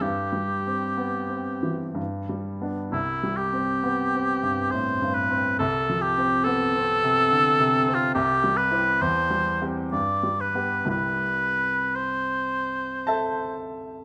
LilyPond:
<<
  \new Staff \with { instrumentName = "Oboe" } { \time 3/4 \key c \major \tempo 4 = 66 g'2 r4 | e'8 g'4. c''8 b'8 | a'8 g'8 a'4.~ a'16 f'16 | g'8 b'8 c''8. r16 d''8 b'8 |
b'4 c''4. r8 | }
  \new Staff \with { instrumentName = "Grand piano" } { \time 3/4 \key c \major r2. | r2. | r2. | r2. |
r2 <a' e'' a''>4 | }
  \new Staff \with { instrumentName = "Grand piano" } { \clef bass \time 3/4 \key c \major \tuplet 3/2 { g,8 g8 c'8 b8 c'8 e8 g,8 g8 <b d'>8 } | \tuplet 3/2 { c,8 g8 c'8 b8 c'8 g,8 a,8 g,8 c'8 } | \tuplet 3/2 { c,8 f8 c'8 b8 c'8 c8 d8 c8 c'8 } | \tuplet 3/2 { c,8 g8 <c' e'>8 e,8 g8 <c' g'>8 g,8 g8 <b g'>8 } |
<c, g e' g'>2. | }
>>